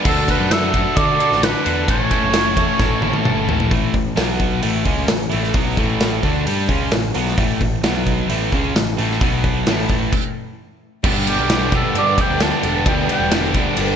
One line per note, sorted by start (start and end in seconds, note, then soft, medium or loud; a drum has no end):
0.04 0.38 D2 medium
0.04 0.27 D3 medium
0.04 0.27 D4 loud
0.04 0.27 F#4 loud
0.04 0.29 A4 medium
0.04 0.28 A4 medium
0.04 kick loud
0.04 crash loud
0.28 0.49 D3 medium
0.28 0.50 D4 medium
0.28 0.50 F#4 medium
0.28 0.51 A4 medium
0.28 0.54 B4 loud
0.28 kick medium
0.28 ride medium
0.40 0.72 F#2 medium
0.51 0.72 D3 medium
0.51 0.72 D4 medium
0.51 0.73 F#4 loud
0.51 0.74 A4 loud
0.51 0.98 E5 loud
0.51 snare loud
0.51 ride loud
0.73 0.85 F#2 loud
0.73 0.95 D3 medium
0.73 0.95 D4 medium
0.73 0.95 F#4 loud
0.73 0.96 A4 loud
0.73 kick medium
0.73 ride medium
0.96 1.18 D3 loud
0.96 1.18 D4 loud
0.96 1.19 F#4 loud
0.96 1.20 A4 loud
0.96 1.45 D5 loud
0.96 kick loud
0.96 ride medium
1.19 1.40 D3 medium
1.19 1.41 D4 medium
1.19 1.41 F#4 medium
1.19 1.41 A4 medium
1.19 ride medium
1.31 1.53 A1 medium
1.31 snare soft
1.42 1.64 D3 medium
1.42 1.64 D4 medium
1.42 1.65 F#4 medium
1.42 1.65 A4 medium
1.42 1.88 B4 loud
1.42 snare loud
1.42 ride medium
1.66 1.88 E2 medium
1.66 1.87 D3 medium
1.66 1.87 D4 medium
1.66 1.87 F#4 medium
1.66 1.88 A4 medium
1.66 ride medium
1.88 2.10 A1 medium
1.88 2.10 A2 loud
1.88 2.11 A3 loud
1.88 2.10 C#4 loud
1.88 2.11 E4 loud
1.88 2.11 A4 loud
1.88 3.22 C#5 loud
1.88 kick loud
1.88 ride medium
2.11 2.32 A2 medium
2.11 2.32 A3 medium
2.11 2.33 C#4 medium
2.11 2.33 E4 medium
2.11 2.33 A4 medium
2.11 kick medium
2.11 ride medium
2.24 2.56 F#1 medium
2.33 2.56 A2 medium
2.33 2.57 A3 medium
2.33 2.57 C#4 medium
2.33 2.57 E4 medium
2.33 2.58 A4 medium
2.33 snare loud
2.33 ride loud
2.57 2.68 E2 medium
2.57 2.78 A2 medium
2.57 2.78 A3 medium
2.57 2.79 C#4 medium
2.57 2.79 E4 medium
2.57 2.79 A4 medium
2.57 kick medium
2.57 ride medium
2.79 3.12 A1 loud
2.79 3.01 A2 medium
2.79 3.02 A3 loud
2.79 3.02 C#4 loud
2.79 3.02 E4 medium
2.79 3.02 A4 loud
2.79 kick loud
2.79 snare medium
3.02 3.24 A2 medium
3.02 3.25 A3 medium
3.02 3.25 C#4 medium
3.02 3.25 E4 loud
3.02 3.26 A4 loud
3.02 high tom medium
3.13 3.25 A1 medium
3.13 high tom medium
3.25 3.46 G1 medium
3.25 3.47 A2 medium
3.25 3.47 A3 medium
3.25 3.48 C#4 medium
3.25 3.48 E4 medium
3.25 3.48 A4 medium
3.25 mid tom medium
3.48 3.69 A1 medium
3.48 3.70 A2 medium
3.48 3.70 A3 medium
3.48 3.70 C#4 medium
3.48 3.71 E4 medium
3.48 3.71 A4 medium
3.48 floor tom loud
3.60 floor tom medium
3.71 3.93 A1 medium
3.71 3.93 A2 medium
3.71 3.94 E3 medium
3.71 3.94 A3 loud
3.71 kick loud
3.71 open hi-hat medium
3.94 4.16 A1 medium
3.94 4.13 A2 medium
3.94 4.13 E3 medium
3.94 kick medium
3.94 open hi-hat soft
4.16 4.60 B1 medium
4.16 4.62 B2 medium
4.16 4.62 F#3 loud
4.16 4.62 B3 medium
4.16 snare loud
4.16 open hi-hat medium
4.40 kick medium
4.40 open hi-hat soft
4.62 4.84 A1 medium
4.62 4.85 A2 medium
4.62 4.85 E3 loud
4.62 4.85 A3 loud
4.62 open hi-hat medium
4.85 5.07 C#2 medium
4.85 5.08 C#3 medium
4.85 5.08 G#3 medium
4.85 5.09 C#4 loud
4.85 kick medium
4.85 open hi-hat medium
5.08 5.31 A1 medium
5.08 5.28 A2 medium
5.08 5.28 E3 medium
5.08 snare loud
5.08 open hi-hat medium
5.32 5.54 A1 medium
5.32 5.54 A2 medium
5.32 5.54 E3 medium
5.32 5.55 A3 medium
5.32 open hi-hat medium
5.44 snare soft
5.54 5.76 B1 medium
5.54 5.77 B2 loud
5.54 5.77 F#3 loud
5.54 5.77 B3 loud
5.54 kick loud
5.54 open hi-hat medium
5.77 6.20 A1 medium
5.77 6.23 A2 medium
5.77 6.23 E3 medium
5.77 6.23 A3 loud
5.77 kick medium
5.77 open hi-hat soft
6.00 snare loud
6.00 open hi-hat medium
6.23 6.45 D2 medium
6.23 6.46 D3 medium
6.23 6.46 A3 medium
6.23 6.46 D4 loud
6.23 kick medium
6.23 open hi-hat medium
6.46 6.67 G2 medium
6.46 6.69 G3 loud
6.46 6.69 D4 medium
6.46 6.70 G4 loud
6.46 open hi-hat medium
6.69 6.90 C#2 loud
6.69 6.92 C#3 medium
6.69 6.92 G#3 medium
6.69 6.92 C#4 loud
6.69 kick medium
6.69 open hi-hat medium
6.92 7.13 A1 medium
6.92 7.11 A2 medium
6.92 7.11 E3 medium
6.92 snare loud
6.92 open hi-hat medium
7.15 7.36 B1 medium
7.15 7.37 B2 medium
7.15 7.37 F#3 medium
7.15 7.38 B3 medium
7.15 open hi-hat medium
7.27 snare soft
7.38 7.59 A1 medium
7.38 7.60 A2 loud
7.38 7.60 E3 loud
7.38 7.61 A3 medium
7.38 kick loud
7.38 open hi-hat medium
7.61 7.82 A1 medium
7.61 7.80 A2 medium
7.61 7.80 E3 medium
7.61 kick medium
7.61 open hi-hat medium
7.83 8.26 B1 medium
7.83 8.29 B2 medium
7.83 8.30 F#3 loud
7.83 8.30 B3 loud
7.83 snare loud
7.83 open hi-hat medium
8.07 kick medium
8.07 open hi-hat medium
8.28 8.50 A1 medium
8.28 8.52 A2 loud
8.28 8.53 E3 medium
8.28 8.53 A3 loud
8.28 open hi-hat medium
8.52 8.74 C#2 loud
8.52 8.75 C#3 medium
8.52 8.76 G#3 medium
8.52 8.76 C#4 medium
8.52 kick medium
8.52 open hi-hat soft
8.75 8.97 A1 medium
8.75 8.95 A2 medium
8.75 8.95 E3 medium
8.75 snare loud
8.75 open hi-hat medium
8.98 9.19 A1 medium
8.98 9.22 A2 medium
8.98 9.22 E3 medium
8.98 9.22 A3 medium
8.98 open hi-hat medium
9.11 snare soft
9.21 9.64 B1 medium
9.21 9.67 B2 medium
9.21 9.67 F#3 loud
9.21 9.67 B3 loud
9.21 kick loud
9.21 open hi-hat medium
9.44 kick medium
9.44 open hi-hat soft
9.67 10.10 A1 medium
9.67 10.13 A2 loud
9.67 10.13 E3 loud
9.67 10.13 A3 loud
9.67 snare loud
9.67 open hi-hat medium
9.89 kick medium
9.89 open hi-hat soft
10.12 kick loud
10.12 crash medium
11.03 11.36 G1 medium
11.03 11.26 G2 medium
11.03 11.26 D3 medium
11.03 11.27 G3 medium
11.03 11.28 B3 medium
11.03 11.27 D4 loud
11.03 11.28 G4 loud
11.03 kick loud
11.03 crash loud
11.27 11.49 G2 medium
11.27 11.48 D3 medium
11.27 11.49 G3 medium
11.27 11.50 B3 loud
11.27 11.50 D4 medium
11.27 11.50 G4 medium
11.27 11.72 G4 medium
11.27 ride medium
11.39 11.71 B1 medium
11.49 11.72 G2 medium
11.49 11.72 D3 medium
11.49 11.73 G3 medium
11.49 11.74 B3 medium
11.49 11.74 D4 medium
11.49 11.74 G4 loud
11.49 snare loud
11.49 ride loud
11.72 11.83 B1 medium
11.72 11.94 G2 medium
11.72 11.95 D3 medium
11.72 11.95 G3 medium
11.72 11.95 B3 medium
11.72 11.96 D4 medium
11.72 11.96 G4 medium
11.72 11.96 A4 medium
11.72 kick medium
11.72 ride medium
11.95 12.17 G2 loud
11.95 12.16 G2 loud
11.95 12.17 D3 loud
11.95 12.16 G3 loud
11.95 12.17 B3 loud
11.95 12.18 D4 loud
11.95 12.17 G4 loud
11.95 12.22 D5 loud
11.95 ride loud
12.17 12.40 G2 medium
12.17 12.40 D3 medium
12.17 12.41 G3 medium
12.17 12.41 B3 loud
12.17 12.42 D4 loud
12.17 12.42 G4 loud
12.17 12.44 G5 loud
12.17 kick medium
12.17 ride medium
12.30 12.51 D2 medium
12.40 12.61 G2 medium
12.40 12.62 D3 medium
12.40 12.62 G3 medium
12.40 12.63 B3 medium
12.40 12.64 D4 medium
12.40 12.63 G4 loud
12.40 12.86 A5 medium
12.40 snare loud
12.40 ride medium
12.63 12.85 E1 loud
12.63 12.84 G2 medium
12.63 12.85 D3 medium
12.63 12.85 G3 medium
12.63 12.86 B3 medium
12.63 12.87 D4 medium
12.63 12.86 G4 medium
12.63 ride medium
12.86 13.08 D2 medium
12.86 13.08 G2 loud
12.86 13.09 D3 loud
12.86 13.09 G3 loud
12.86 13.09 B3 loud
12.86 13.11 D4 loud
12.86 13.10 G4 loud
12.86 13.10 G5 medium
12.86 kick loud
12.86 ride loud
13.09 13.31 G2 medium
13.09 13.32 D3 medium
13.09 13.32 G3 medium
13.09 13.32 B3 medium
13.09 13.33 D4 loud
13.09 13.33 G4 medium
13.09 13.33 G5 medium
13.09 ride medium
13.20 13.52 E1 medium
13.31 13.54 G2 medium
13.31 13.54 D3 loud
13.31 13.55 G3 medium
13.31 13.55 B3 medium
13.31 13.56 D4 medium
13.31 13.56 G4 loud
13.31 snare loud
13.31 ride loud
13.54 13.66 D2 medium
13.54 13.77 G2 medium
13.54 13.77 D3 medium
13.54 13.78 G3 medium
13.54 13.78 B3 medium
13.54 13.79 D4 medium
13.54 13.78 G4 loud
13.54 kick medium
13.54 ride medium
13.77 13.96 G1 medium
13.77 13.96 G2 medium
13.77 13.96 D3 loud
13.77 13.96 G3 loud
13.77 13.96 B3 loud
13.77 13.96 D4 loud
13.77 13.96 G4 loud
13.77 ride loud